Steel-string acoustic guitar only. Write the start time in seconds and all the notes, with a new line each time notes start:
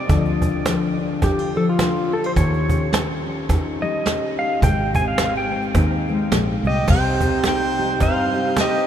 Already playing: G4
0.09 D3 F3 D4 F4 A4
0.43 D4
0.66 F3
1.01 D4
1.23 D4
1.39 F4
1.55 F3
1.81 D4
2.12 D4
2.24 F4
2.37 D#3 G4
2.70 C#4
2.94 G3
3.26 C#4
3.51 D#4
3.82 G3
4.07 C#4
4.40 G4
4.63 G#2 G4
4.97 C4
5.19 G#3
5.52 C4
5.77 D#4
6.10 G#3
6.33 G#2
6.67 A#2
6.89 C3 G3 C4 D#4 G4
7.22 C4
7.47 D#4
7.79 G4
8.03 G2
8.36 G4
8.59 C4